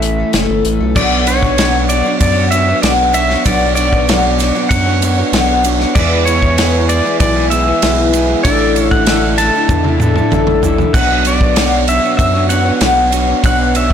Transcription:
Already playing: A1 A2 E3 A3 C#4 A4 E5
0.02 E3 A3 C#4 A4, closed hi-hat
0.18 A3 C#4 A4
0.33 F#1 A2 E3 A3 C#4 A4, snare, closed hi-hat
0.50 G1
0.65 A1 E3 A3 C#4 A4, closed hi-hat
0.81 B1 A3 C#4 A4
0.96 B1 B2 F#3 B3 D4 F#4 C#5 D5, kick, crash, shaker
1.27 B3 D4 F#4 C#5, ride, shaker
1.42 B3 D4 F#4 C#5, kick, shaker
1.58 B2 F#3 B3 D4 F#4 C#5, snare, ride, shaker
1.75 B3 D4 F#4 C#5
1.89 B3 D4 F#4 C#5 D5, ride, shaker
2.05 B3 D4 F#4 C#5, shaker
2.21 F#2 D5, kick, ride, shaker
2.36 B3 D4 F#4 C#5
2.51 B3 D4 F#4 C#5 E5, ride, shaker
2.68 B3 D4 F#4 C#5
2.82 B1 B2 F#3 B3 D4 F#4 D5, snare, ride, shaker
3.14 B3 D4 F#4 C#5 E5, ride, shaker
3.30 B3 D4 F#4 C#5, snare
3.45 B1 B2 F#3 B3 D4 F#4 C#5 D5, kick, ride, shaker
3.63 B3 D4 F#4
3.75 B3 D4 C#5 D5, ride, shaker
3.80 F#4
3.92 B3 D4 F#4 C#5, kick, shaker
4.08 B2 F#3 B3 D4 F#4 C#5, snare, ride, shaker
4.24 B3 D4 F#4 C#5
4.39 B3 D4 F#4 C#5, snare, ride, shaker
4.55 B3 D4 F#4 C#5, shaker
4.69 F#2 F#5, kick, ride, shaker
4.87 B3 D4 F#4 C#5
5.01 B3 D4 F#4 C#5, ride, shaker
5.18 B3 D4 F#4 C#5
5.33 B1 B2 F#3 B3 D4 F#4 C#5, snare, ride, shaker
5.64 B3 D4 F#4 C#5, ride, shaker
5.79 B3 D4 F#4 C#5, snare
5.95 E2 E3 G#3 B3 E4 G#4 B4 D5, kick, crash, shaker
6.25 G#3 B3 E4 G#4 B4 C#5, ride, shaker
6.42 G#3 B3 E4 G#4, kick, shaker
6.58 E2 E3 G#3 B3 E4 G#4 B4, snare, ride, shaker
6.74 E4 G#4 B4
6.89 G#3 B3 E4 G#4 B4 D5, ride, shaker
7.05 G#3 B3 E4 G#4 B4, shaker
7.20 B1 D5, kick, ride, shaker
7.35 G#3 B3 E4 G#4 B4
7.50 G#3 B3 E4 G#4 B4 E5, ride, shaker
7.67 G#3 B3 E4 G#4 B4
7.82 B1 E3 B3 E4 G#4 B4, snare, ride, shaker
8.13 G#3 B3 E4 G#4 B4, ride, shaker
8.30 G#3 B3 E4 G#4
8.43 A1 A2 D3 A3 D4 E4 A4 D5, kick, ride, shaker
8.76 D3 A3 D4 E4 A4 C#5 D5, ride, shaker
8.91 D4 E4 A4 F#5, kick, shaker
9.06 A2 D3 A3 D4 E4 A4 D5, snare, ride, shaker
9.22 E4 A4 D5
9.37 D3 A3 D4 E4 A4 D5 A5, snare, ride, shaker
9.53 D4 E4 A4 D5, shaker
9.69 E2, kick, shaker
9.84 D4 E4 A4 D5, high tom
10.00 D3 A3 D4 E4 A4 D5, mid tom, shaker
10.15 D4 E4 A4 D5, mid tom, shaker
10.30 A1 A3 E4 A4 D5, mid tom, shaker
10.47 mid tom
10.62 D3 A3 D4 E4 A4 D5, floor tom, shaker
10.78 D4 E4 A4, floor tom, shaker
10.93 B1 B2 F#3 B3 D4 F#4 C#5 F#5, kick, crash, shaker
11.09 B3 D4 F#4 C#5
11.25 B3 D4 F#4 C#5 D5, ride, shaker
11.41 B3 D4 F#4 C#5, kick, shaker
11.55 B2 F#3 B3 D4 F#4 C#5, snare, ride, shaker
11.71 B3 D4 F#4 C#5
11.87 B3 D4 F#4 C#5 E5, ride, shaker
12.02 B3 D4 F#4 C#5, shaker
12.17 F#2 E5, kick, ride, shaker
12.33 B3 D4 F#4 C#5
12.49 B3 D4 F#4 C#5 F#5, ride, shaker
12.65 B3 D4 F#4 C#5
12.80 B1 B2 F#3 B3 D4 F#4 C#5, snare, ride, shaker
13.12 B3 D4 F#4 C#5, ride, shaker
13.27 B3 D4 F#4 C#5
13.43 B1 B2 F#3 B3 D4 F#4 C#5 F#5, kick, ride, shaker
13.74 B3 D4 F#4 C#5 E5, ride, shaker
13.90 C#5

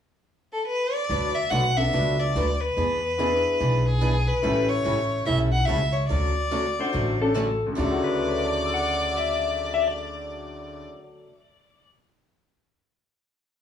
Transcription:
0.53 A4
0.67 B4
0.94 D5
1.09 D2 D3 F#3 A3 D4 F#4 B4
1.35 E5
1.50 B1 D3 F#3 A3 D4 F#4 B4 F#5
1.77 B3 D4 F#4 A4 E5
1.93 C#2 D3 F#3 A3 D4 F#4 B4
2.19 D5
2.35 D2 D3 F#3 A3 D4 F#4 B4
2.61 B4
2.77 E2 E3 B3 D4 G#4
3.18 E3 B3 D4 E4 G#4
3.60 B1 E3 B3 D4 G#4
3.86 G#4
4.01 E3 B3 D4 G#4
4.27 B4
4.42 A1 E3 G3 A3 C#4 E4 G4 A4
4.69 C#5
4.84 A1 E3 G3 C#4 E4 A4
5.25 B1 E3 G3 C#4 E4 A4 E5
5.52 F#5
5.66 C#2 E3 G3 C#4 E4 A4 E5
5.93 C#5
6.07 D2 D3 F#3 A3 C#4 F#4 D5
6.51 D3 F#3 A3 C#4 F#4
6.79 A3 D4 F#4 C5
6.93 A1 D3 F#3 A3 C#4 F#4
7.21 A3 C#4 D4 A4
7.34 D3 F#3 A3 C#4 F#4 A4
7.66 D2
7.73 D3 F#3
7.77 D2 C#3 A3 F#4 D5
7.85 E4
7.91 F#4
8.04 B4
8.21 A4
8.28 C#5
8.36 E5
8.45 D5 A5
8.55 C#6
8.66 E6
8.74 F#5 A6
9.17 E5
9.74 E5
9.88 D5

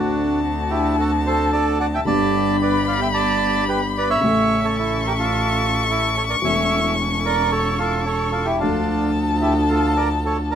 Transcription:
Already playing: D2 D3 A3 C4 D4 F#4 A5
0.70 E4 G4
0.99 F#4 A4
1.26 A4 C5
1.53 A4 D5
1.80 D5 F#5
1.94 E5 G5
2.05 G1 G2 D3 G3 B3 D4 G4 D5 A5 B5
2.09 G4
2.62 B4 D5
2.88 D5 F5
3.02 E5 G5
3.14 D5 A5
3.69 G4 B4
3.98 B4 D5
4.10 C#5 E5
4.21 A1 A2 C#3 A3 C#4 A4 E5 C#6
4.25 A4
4.65 A4 C#5
4.78 E4 A4
5.07 G4 A#4
5.19 F4 A4
5.90 E4 A4
6.17 A4 C#5
6.29 A#4 D5
6.42 E1 E2 E3 A3 C#4 E4 A4 C#5 E5
6.46 A4
7.25 A#4 D5
7.51 A4 C#5
7.79 F4 A4
8.06 A4 C#5
8.32 F4 A4
8.45 E4 G4
8.60 D2 D3 F3 A3 D4 F4 A4 A5
8.64 A4
9.41 E4 G4
9.69 F4 A4
9.96 A#4 D5
10.25 A4 C#5
10.51 A#4

